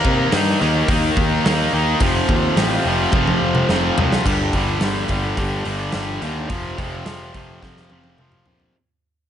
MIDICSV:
0, 0, Header, 1, 4, 480
1, 0, Start_track
1, 0, Tempo, 561272
1, 1720, Time_signature, 4, 2, 24, 8
1, 7950, End_track
2, 0, Start_track
2, 0, Title_t, "Distorted electric guitar"
2, 0, Program_c, 0, 30
2, 0, Note_on_c, 0, 51, 99
2, 0, Note_on_c, 0, 58, 116
2, 0, Note_on_c, 0, 63, 120
2, 267, Note_off_c, 0, 51, 0
2, 269, Note_off_c, 0, 63, 0
2, 270, Note_off_c, 0, 58, 0
2, 277, Note_on_c, 0, 51, 94
2, 280, Note_on_c, 0, 63, 92
2, 281, Note_on_c, 0, 58, 98
2, 508, Note_off_c, 0, 51, 0
2, 512, Note_off_c, 0, 58, 0
2, 516, Note_off_c, 0, 63, 0
2, 518, Note_on_c, 0, 51, 86
2, 522, Note_on_c, 0, 58, 105
2, 527, Note_on_c, 0, 63, 101
2, 751, Note_off_c, 0, 51, 0
2, 756, Note_off_c, 0, 58, 0
2, 761, Note_on_c, 0, 51, 116
2, 762, Note_off_c, 0, 63, 0
2, 767, Note_on_c, 0, 58, 120
2, 772, Note_on_c, 0, 63, 120
2, 1230, Note_off_c, 0, 51, 0
2, 1236, Note_off_c, 0, 58, 0
2, 1240, Note_on_c, 0, 51, 90
2, 1243, Note_off_c, 0, 63, 0
2, 1246, Note_on_c, 0, 58, 98
2, 1253, Note_on_c, 0, 63, 117
2, 1473, Note_off_c, 0, 51, 0
2, 1475, Note_off_c, 0, 58, 0
2, 1481, Note_off_c, 0, 63, 0
2, 1483, Note_on_c, 0, 51, 82
2, 1486, Note_on_c, 0, 58, 100
2, 1491, Note_on_c, 0, 63, 103
2, 1707, Note_off_c, 0, 51, 0
2, 1708, Note_off_c, 0, 58, 0
2, 1711, Note_off_c, 0, 63, 0
2, 1719, Note_on_c, 0, 41, 115
2, 1725, Note_on_c, 0, 48, 110
2, 1726, Note_on_c, 0, 53, 108
2, 2185, Note_off_c, 0, 41, 0
2, 2192, Note_off_c, 0, 48, 0
2, 2195, Note_off_c, 0, 53, 0
2, 2196, Note_on_c, 0, 41, 89
2, 2202, Note_on_c, 0, 48, 96
2, 2205, Note_on_c, 0, 53, 94
2, 2438, Note_off_c, 0, 41, 0
2, 2443, Note_off_c, 0, 48, 0
2, 2448, Note_on_c, 0, 41, 96
2, 2449, Note_off_c, 0, 53, 0
2, 2454, Note_on_c, 0, 48, 90
2, 2459, Note_on_c, 0, 53, 101
2, 2680, Note_off_c, 0, 41, 0
2, 2685, Note_off_c, 0, 53, 0
2, 2686, Note_off_c, 0, 48, 0
2, 2690, Note_on_c, 0, 41, 118
2, 2696, Note_on_c, 0, 48, 116
2, 2696, Note_on_c, 0, 53, 127
2, 3155, Note_off_c, 0, 41, 0
2, 3165, Note_off_c, 0, 48, 0
2, 3165, Note_on_c, 0, 41, 86
2, 3168, Note_off_c, 0, 53, 0
2, 3175, Note_on_c, 0, 48, 92
2, 3178, Note_on_c, 0, 53, 112
2, 3389, Note_off_c, 0, 41, 0
2, 3396, Note_off_c, 0, 48, 0
2, 3399, Note_off_c, 0, 53, 0
2, 3399, Note_on_c, 0, 41, 80
2, 3406, Note_on_c, 0, 48, 88
2, 3409, Note_on_c, 0, 53, 103
2, 3621, Note_off_c, 0, 41, 0
2, 3625, Note_off_c, 0, 48, 0
2, 3626, Note_off_c, 0, 53, 0
2, 3635, Note_on_c, 0, 43, 96
2, 3644, Note_on_c, 0, 50, 94
2, 3650, Note_on_c, 0, 55, 111
2, 3878, Note_off_c, 0, 43, 0
2, 3885, Note_off_c, 0, 50, 0
2, 3888, Note_on_c, 0, 43, 79
2, 3892, Note_off_c, 0, 55, 0
2, 3895, Note_on_c, 0, 50, 86
2, 3902, Note_on_c, 0, 55, 82
2, 4117, Note_off_c, 0, 43, 0
2, 4119, Note_off_c, 0, 50, 0
2, 4123, Note_off_c, 0, 55, 0
2, 4127, Note_on_c, 0, 43, 72
2, 4129, Note_on_c, 0, 50, 81
2, 4133, Note_on_c, 0, 55, 74
2, 4351, Note_off_c, 0, 43, 0
2, 4356, Note_off_c, 0, 50, 0
2, 4361, Note_on_c, 0, 43, 75
2, 4362, Note_off_c, 0, 55, 0
2, 4366, Note_on_c, 0, 50, 88
2, 4372, Note_on_c, 0, 55, 89
2, 4582, Note_off_c, 0, 43, 0
2, 4586, Note_off_c, 0, 50, 0
2, 4592, Note_on_c, 0, 43, 96
2, 4595, Note_off_c, 0, 55, 0
2, 4596, Note_on_c, 0, 50, 94
2, 4606, Note_on_c, 0, 55, 109
2, 4819, Note_off_c, 0, 43, 0
2, 4824, Note_off_c, 0, 50, 0
2, 4830, Note_on_c, 0, 43, 79
2, 4833, Note_off_c, 0, 55, 0
2, 4834, Note_on_c, 0, 50, 77
2, 4843, Note_on_c, 0, 55, 78
2, 5063, Note_off_c, 0, 43, 0
2, 5066, Note_off_c, 0, 50, 0
2, 5072, Note_off_c, 0, 55, 0
2, 5073, Note_on_c, 0, 43, 85
2, 5077, Note_on_c, 0, 50, 91
2, 5083, Note_on_c, 0, 55, 89
2, 5306, Note_off_c, 0, 43, 0
2, 5308, Note_off_c, 0, 50, 0
2, 5315, Note_off_c, 0, 55, 0
2, 5316, Note_on_c, 0, 43, 75
2, 5319, Note_on_c, 0, 50, 81
2, 5325, Note_on_c, 0, 55, 86
2, 5542, Note_off_c, 0, 43, 0
2, 5543, Note_off_c, 0, 50, 0
2, 5546, Note_off_c, 0, 55, 0
2, 5550, Note_on_c, 0, 41, 91
2, 5553, Note_on_c, 0, 48, 86
2, 5563, Note_on_c, 0, 53, 92
2, 5793, Note_off_c, 0, 41, 0
2, 5794, Note_off_c, 0, 48, 0
2, 5802, Note_off_c, 0, 53, 0
2, 5803, Note_on_c, 0, 41, 71
2, 5804, Note_on_c, 0, 48, 81
2, 5812, Note_on_c, 0, 53, 83
2, 6020, Note_off_c, 0, 41, 0
2, 6028, Note_off_c, 0, 48, 0
2, 6030, Note_off_c, 0, 53, 0
2, 6030, Note_on_c, 0, 41, 72
2, 6038, Note_on_c, 0, 48, 79
2, 6041, Note_on_c, 0, 53, 83
2, 6275, Note_off_c, 0, 41, 0
2, 6278, Note_off_c, 0, 48, 0
2, 6285, Note_on_c, 0, 41, 75
2, 6286, Note_off_c, 0, 53, 0
2, 6288, Note_on_c, 0, 48, 81
2, 6296, Note_on_c, 0, 53, 74
2, 6506, Note_off_c, 0, 41, 0
2, 6513, Note_off_c, 0, 48, 0
2, 6516, Note_on_c, 0, 41, 86
2, 6517, Note_off_c, 0, 53, 0
2, 6523, Note_on_c, 0, 48, 94
2, 6527, Note_on_c, 0, 53, 101
2, 6755, Note_off_c, 0, 41, 0
2, 6764, Note_off_c, 0, 48, 0
2, 6765, Note_on_c, 0, 41, 63
2, 6768, Note_off_c, 0, 53, 0
2, 6775, Note_on_c, 0, 48, 73
2, 6779, Note_on_c, 0, 53, 79
2, 6998, Note_off_c, 0, 41, 0
2, 7002, Note_off_c, 0, 48, 0
2, 7008, Note_on_c, 0, 41, 76
2, 7011, Note_off_c, 0, 53, 0
2, 7012, Note_on_c, 0, 48, 80
2, 7021, Note_on_c, 0, 53, 93
2, 7232, Note_off_c, 0, 41, 0
2, 7234, Note_off_c, 0, 48, 0
2, 7239, Note_off_c, 0, 53, 0
2, 7242, Note_on_c, 0, 41, 69
2, 7244, Note_on_c, 0, 48, 77
2, 7250, Note_on_c, 0, 53, 83
2, 7471, Note_off_c, 0, 41, 0
2, 7472, Note_off_c, 0, 48, 0
2, 7474, Note_off_c, 0, 53, 0
2, 7950, End_track
3, 0, Start_track
3, 0, Title_t, "Picked electric bass"
3, 0, Program_c, 1, 34
3, 43, Note_on_c, 1, 48, 84
3, 220, Note_off_c, 1, 48, 0
3, 284, Note_on_c, 1, 43, 102
3, 460, Note_off_c, 1, 43, 0
3, 528, Note_on_c, 1, 39, 102
3, 702, Note_off_c, 1, 39, 0
3, 754, Note_on_c, 1, 39, 104
3, 933, Note_off_c, 1, 39, 0
3, 1003, Note_on_c, 1, 39, 96
3, 1178, Note_off_c, 1, 39, 0
3, 1252, Note_on_c, 1, 39, 108
3, 1423, Note_off_c, 1, 39, 0
3, 1481, Note_on_c, 1, 39, 86
3, 1656, Note_off_c, 1, 39, 0
3, 1720, Note_on_c, 1, 29, 107
3, 1895, Note_off_c, 1, 29, 0
3, 1960, Note_on_c, 1, 39, 92
3, 2134, Note_off_c, 1, 39, 0
3, 2194, Note_on_c, 1, 33, 106
3, 2370, Note_off_c, 1, 33, 0
3, 2440, Note_on_c, 1, 29, 106
3, 2614, Note_off_c, 1, 29, 0
3, 2676, Note_on_c, 1, 29, 99
3, 2851, Note_off_c, 1, 29, 0
3, 2927, Note_on_c, 1, 29, 88
3, 3098, Note_off_c, 1, 29, 0
3, 3160, Note_on_c, 1, 29, 102
3, 3333, Note_off_c, 1, 29, 0
3, 3406, Note_on_c, 1, 36, 90
3, 3577, Note_off_c, 1, 36, 0
3, 3639, Note_on_c, 1, 31, 83
3, 3837, Note_off_c, 1, 31, 0
3, 3879, Note_on_c, 1, 31, 82
3, 4077, Note_off_c, 1, 31, 0
3, 4106, Note_on_c, 1, 31, 94
3, 4309, Note_off_c, 1, 31, 0
3, 4356, Note_on_c, 1, 31, 80
3, 4555, Note_off_c, 1, 31, 0
3, 4600, Note_on_c, 1, 31, 79
3, 4798, Note_off_c, 1, 31, 0
3, 4841, Note_on_c, 1, 31, 79
3, 5039, Note_off_c, 1, 31, 0
3, 5087, Note_on_c, 1, 31, 93
3, 5283, Note_off_c, 1, 31, 0
3, 5319, Note_on_c, 1, 39, 81
3, 5519, Note_off_c, 1, 39, 0
3, 5566, Note_on_c, 1, 29, 90
3, 5763, Note_off_c, 1, 29, 0
3, 5802, Note_on_c, 1, 29, 75
3, 6001, Note_off_c, 1, 29, 0
3, 6047, Note_on_c, 1, 29, 85
3, 6245, Note_off_c, 1, 29, 0
3, 6285, Note_on_c, 1, 29, 80
3, 6484, Note_off_c, 1, 29, 0
3, 6525, Note_on_c, 1, 29, 77
3, 6724, Note_off_c, 1, 29, 0
3, 6773, Note_on_c, 1, 29, 80
3, 6970, Note_off_c, 1, 29, 0
3, 7008, Note_on_c, 1, 29, 88
3, 7208, Note_off_c, 1, 29, 0
3, 7250, Note_on_c, 1, 34, 78
3, 7450, Note_off_c, 1, 34, 0
3, 7950, End_track
4, 0, Start_track
4, 0, Title_t, "Drums"
4, 40, Note_on_c, 9, 36, 97
4, 126, Note_off_c, 9, 36, 0
4, 275, Note_on_c, 9, 46, 67
4, 278, Note_on_c, 9, 38, 118
4, 361, Note_off_c, 9, 46, 0
4, 363, Note_off_c, 9, 38, 0
4, 517, Note_on_c, 9, 38, 36
4, 602, Note_off_c, 9, 38, 0
4, 756, Note_on_c, 9, 46, 65
4, 757, Note_on_c, 9, 36, 116
4, 841, Note_off_c, 9, 46, 0
4, 842, Note_off_c, 9, 36, 0
4, 999, Note_on_c, 9, 36, 96
4, 1085, Note_off_c, 9, 36, 0
4, 1245, Note_on_c, 9, 46, 65
4, 1248, Note_on_c, 9, 38, 112
4, 1331, Note_off_c, 9, 46, 0
4, 1333, Note_off_c, 9, 38, 0
4, 1711, Note_on_c, 9, 46, 62
4, 1716, Note_on_c, 9, 36, 114
4, 1796, Note_off_c, 9, 46, 0
4, 1801, Note_off_c, 9, 36, 0
4, 1957, Note_on_c, 9, 36, 93
4, 2042, Note_off_c, 9, 36, 0
4, 2198, Note_on_c, 9, 46, 70
4, 2201, Note_on_c, 9, 38, 113
4, 2284, Note_off_c, 9, 46, 0
4, 2286, Note_off_c, 9, 38, 0
4, 2670, Note_on_c, 9, 48, 68
4, 2675, Note_on_c, 9, 36, 122
4, 2755, Note_off_c, 9, 48, 0
4, 2761, Note_off_c, 9, 36, 0
4, 2800, Note_on_c, 9, 48, 68
4, 2886, Note_off_c, 9, 48, 0
4, 3034, Note_on_c, 9, 47, 72
4, 3120, Note_off_c, 9, 47, 0
4, 3156, Note_on_c, 9, 38, 90
4, 3242, Note_off_c, 9, 38, 0
4, 3401, Note_on_c, 9, 43, 119
4, 3486, Note_off_c, 9, 43, 0
4, 3528, Note_on_c, 9, 38, 104
4, 3613, Note_off_c, 9, 38, 0
4, 3640, Note_on_c, 9, 36, 95
4, 3646, Note_on_c, 9, 49, 92
4, 3726, Note_off_c, 9, 36, 0
4, 3732, Note_off_c, 9, 49, 0
4, 3875, Note_on_c, 9, 46, 48
4, 3877, Note_on_c, 9, 36, 81
4, 3960, Note_off_c, 9, 46, 0
4, 3962, Note_off_c, 9, 36, 0
4, 4112, Note_on_c, 9, 46, 65
4, 4114, Note_on_c, 9, 38, 100
4, 4197, Note_off_c, 9, 46, 0
4, 4200, Note_off_c, 9, 38, 0
4, 4347, Note_on_c, 9, 46, 45
4, 4355, Note_on_c, 9, 36, 73
4, 4432, Note_off_c, 9, 46, 0
4, 4440, Note_off_c, 9, 36, 0
4, 4595, Note_on_c, 9, 36, 77
4, 4595, Note_on_c, 9, 46, 57
4, 4681, Note_off_c, 9, 36, 0
4, 4681, Note_off_c, 9, 46, 0
4, 4834, Note_on_c, 9, 46, 44
4, 4920, Note_off_c, 9, 46, 0
4, 5066, Note_on_c, 9, 46, 57
4, 5068, Note_on_c, 9, 38, 89
4, 5151, Note_off_c, 9, 46, 0
4, 5154, Note_off_c, 9, 38, 0
4, 5319, Note_on_c, 9, 46, 45
4, 5405, Note_off_c, 9, 46, 0
4, 5555, Note_on_c, 9, 46, 57
4, 5558, Note_on_c, 9, 36, 101
4, 5641, Note_off_c, 9, 46, 0
4, 5644, Note_off_c, 9, 36, 0
4, 5802, Note_on_c, 9, 36, 81
4, 5809, Note_on_c, 9, 46, 47
4, 5811, Note_on_c, 9, 38, 29
4, 5887, Note_off_c, 9, 36, 0
4, 5894, Note_off_c, 9, 46, 0
4, 5897, Note_off_c, 9, 38, 0
4, 6037, Note_on_c, 9, 46, 60
4, 6040, Note_on_c, 9, 38, 92
4, 6123, Note_off_c, 9, 46, 0
4, 6125, Note_off_c, 9, 38, 0
4, 6281, Note_on_c, 9, 36, 74
4, 6284, Note_on_c, 9, 46, 41
4, 6367, Note_off_c, 9, 36, 0
4, 6370, Note_off_c, 9, 46, 0
4, 6522, Note_on_c, 9, 36, 74
4, 6524, Note_on_c, 9, 38, 52
4, 6607, Note_off_c, 9, 36, 0
4, 6610, Note_off_c, 9, 38, 0
4, 6642, Note_on_c, 9, 38, 45
4, 6728, Note_off_c, 9, 38, 0
4, 6753, Note_on_c, 9, 48, 59
4, 6839, Note_off_c, 9, 48, 0
4, 6874, Note_on_c, 9, 48, 51
4, 6959, Note_off_c, 9, 48, 0
4, 6997, Note_on_c, 9, 47, 66
4, 7083, Note_off_c, 9, 47, 0
4, 7113, Note_on_c, 9, 45, 64
4, 7198, Note_off_c, 9, 45, 0
4, 7232, Note_on_c, 9, 43, 81
4, 7317, Note_off_c, 9, 43, 0
4, 7352, Note_on_c, 9, 43, 74
4, 7437, Note_off_c, 9, 43, 0
4, 7950, End_track
0, 0, End_of_file